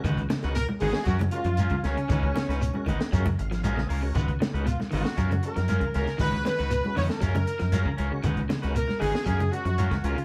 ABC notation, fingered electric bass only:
X:1
M:4/4
L:1/16
Q:1/4=117
K:Dbmix
V:1 name="Fingered electric bass" clef=bass
D,,2 z D,,2 z A,,, z G,,2 z G,,2 z D,, z | D,,2 z D,,2 z A,,, z G,,2 A,,,2 B,,,2 D,,2 | D,,2 z D,,2 z A,,, z G,,2 z G,,2 z D,, z | D,,2 z D,,2 z F,, z G,,2 z G,,2 z D,, z |
D,,2 z D,,2 z A,,, z G,,2 z G,,2 z D,, z |]